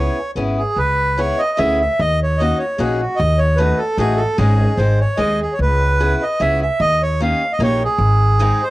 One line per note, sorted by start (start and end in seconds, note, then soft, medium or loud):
0.00 0.17 B3 soft
0.00 0.17 C#4 soft
0.00 0.17 E4 soft
0.00 0.18 G#4 medium
0.00 0.31 C#5 medium
0.35 0.63 G#1 medium
0.35 0.58 B3 medium
0.35 0.59 C#4 soft
0.35 0.59 E4 medium
0.35 0.59 G#4 medium
0.58 0.78 G#4 medium
0.76 1.30 C#2 medium
0.76 1.20 B4 loud
1.17 1.40 B3 medium
1.17 1.40 C#4 medium
1.17 1.40 E4 soft
1.17 1.40 G#4 medium
1.17 1.41 C#5 medium
1.38 1.59 D#5 medium
1.57 1.86 D2 medium
1.57 1.80 B3 medium
1.57 1.80 C#4 medium
1.57 1.81 E4 medium
1.57 1.81 G#4 medium
1.57 1.79 E5 medium
1.81 2.00 E5 medium
2.00 2.51 D#2 loud
2.00 2.20 D#5 loud
2.23 2.41 C#5 medium
2.38 2.61 A#3 medium
2.38 2.61 C#4 medium
2.38 2.62 D#4 medium
2.38 2.58 D#5 medium
2.42 2.62 F#4 medium
2.59 2.79 C#5 medium
2.78 3.05 A#1 medium
2.78 3.00 A#3 medium
2.78 3.00 C#4 medium
2.78 3.00 D#4 medium
2.78 3.01 F#4 medium
2.78 3.01 G#4 medium
3.00 3.20 F#4 medium
3.16 3.71 D#2 loud
3.16 3.39 D#5 loud
3.38 3.58 C#5 medium
3.56 3.80 A3 medium
3.56 3.79 C#4 medium
3.56 3.80 D#4 medium
3.56 3.79 B4 medium
3.60 3.80 F#4 medium
3.77 3.97 A4 medium
3.98 4.24 A1 medium
3.98 4.19 A3 medium
3.98 4.19 C#4 medium
3.98 4.20 D#4 medium
3.98 4.20 F#4 medium
3.98 4.20 G#4 loud
4.17 4.37 A4 medium
4.38 4.64 G#1 loud
4.38 4.70 G#3 medium
4.38 4.71 C#4 medium
4.38 4.71 D#4 soft
4.38 4.79 G#4 medium
4.38 4.71 G#4 medium
4.77 5.04 G#1 loud
4.77 5.00 G#3 medium
4.77 4.99 C4 medium
4.77 5.00 D#4 soft
4.77 5.00 G#4 medium
4.77 5.00 C5 medium
5.00 5.19 C#5 medium
5.17 5.45 D#2 medium
5.17 5.39 G#3 medium
5.17 5.40 C4 medium
5.17 5.40 D#4 soft
5.17 5.40 G#4 medium
5.17 5.40 D#5 medium
5.42 5.54 G#4 medium
5.53 5.59 C#5 medium
5.59 6.12 C#2 loud
5.59 6.24 B4 loud
6.00 6.21 B3 medium
6.00 6.21 C#4 medium
6.00 6.22 E4 soft
6.00 6.22 G#4 medium
6.22 6.41 D#5 medium
6.40 6.66 C#2 medium
6.40 6.62 B3 medium
6.40 6.61 C#4 medium
6.40 6.61 E4 soft
6.40 6.62 G#4 medium
6.40 6.60 E5 loud
6.62 6.81 E5 medium
6.80 7.32 D#2 loud
6.80 7.02 D#5 loud
7.03 7.21 C#5 medium
7.20 7.41 A#3 medium
7.20 7.42 C#4 medium
7.20 7.42 D#4 medium
7.20 7.42 G4 medium
7.20 7.52 F5 loud
7.53 7.61 D#5 medium
7.59 7.85 A#1 medium
7.59 7.81 A#3 medium
7.59 7.81 C#4 medium
7.59 7.82 D#4 medium
7.59 7.82 G4 medium
7.59 7.83 C#5 loud
7.85 8.64 G#4 medium
7.98 8.50 G#1 loud
8.39 8.60 G#3 medium
8.39 8.60 C4 medium
8.39 8.61 D#4 medium
8.39 8.61 G#4 medium
8.62 8.70 C5 medium